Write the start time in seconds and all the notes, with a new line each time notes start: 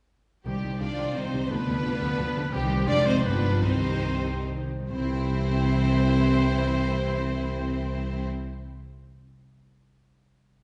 0.45 C2 C3 D#3 G3 C4 G4
0.54 D#4
0.63 C2 D#3 G3 G4
0.71 C5
0.80 C2 D#3 G3 D4 F4 D5 D#5
0.89 G5
0.98 C2 D#3 G3 C6
1.07 D#5
1.14 C2 D#3 G3 C4 D#4 C5
1.24 G4
1.32 C2 D#3 G3 D#4
1.41 G3
1.48 D2 D3 F3 B3 D4 B4
1.58 D4
1.66 D2 D3 F3 F4
1.75 B4
1.83 D2 D3 F3 D5
1.92 F5
2.00 D2 D3 F3 B5
2.09 D5
2.18 D2 D3 F3 B4
2.26 F4
2.35 D2 D3 F3 D4
2.44 B3
2.52 C2 C3 D#3 G3 C4 G4
2.62 D#4
2.70 G4
2.80 C5
2.87 F1 F2 D#3 G#3 D4 F4 D5
2.97 D#4
3.05 C4 D#4 F4 C5
3.15 G#4
3.24 G1 G2 F3 G#3 B3 D4 B4
3.34 D4
3.44 F4
3.54 G#4
3.62 C2 C3 D#3 G3 C4 D#4 C5
3.73 C4
3.83 D#4
3.93 G4
4.04 C5
4.14 D#5
4.25 G5
4.35 C5
4.46 G4
4.57 D#4
4.68 C4
4.80 G3
4.90 C2 C3 E3 C4 E4 C5
4.98 C4
5.05 E4
5.12 G4
5.19 E5